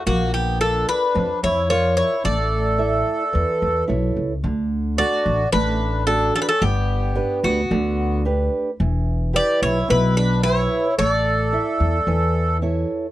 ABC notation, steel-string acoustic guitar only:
X:1
M:4/4
L:1/8
Q:1/4=110
K:D
V:1 name="Steel-string acoustic guitar"
_B,2 [=F_Bd]2 =F,2 [FBd]2 | A,2 [EAe]2 E,2 [EAc]2 | D,2 [DFA]2 A,2 [DFA]2 | G,2 [DGB]2 D,2 [DGB]2 |
E,2 [EGB]2 B,,2 [EGB]2 | A,2 [EAe]2 E,2 [EAc]2 |]